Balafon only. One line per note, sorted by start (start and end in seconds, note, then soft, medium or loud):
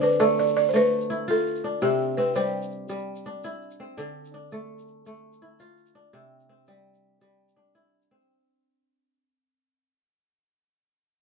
0.03 0.21 B4 medium
0.20 0.38 D5 loud
0.39 0.55 D5 medium
0.57 0.68 D5 loud
0.69 0.75 C5 medium
0.76 1.31 B4 loud
1.30 1.85 A4 medium
1.82 2.19 G4 medium
2.17 2.36 B4 medium
2.36 3.40 C5 medium